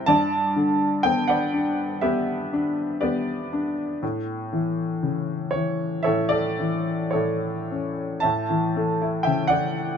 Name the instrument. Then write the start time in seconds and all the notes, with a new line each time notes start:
upright piano
Already playing: G3 G4 C5 G5
0.06 G2 D5 A5
0.56 D3
1.03 B3 G5
1.28 B4 D5 F#5
1.54 D4
2.01 B3 G4 B4 E5
2.53 D4
3.01 B3 G4 B4 D5
3.53 D4
4.03 A2
4.53 E3
5.03 C#3
5.51 C#5
5.55 E3
6.03 A4 C#5 E5
6.07 A2
6.29 A4 D5
6.60 E3
7.11 E4 A4 C#5
7.15 A2
7.71 C#4
8.20 A2 E5 A5
8.50 E3
8.76 A3
9.02 E4
9.23 C#3 E5 G5
9.47 E4 D5 F#5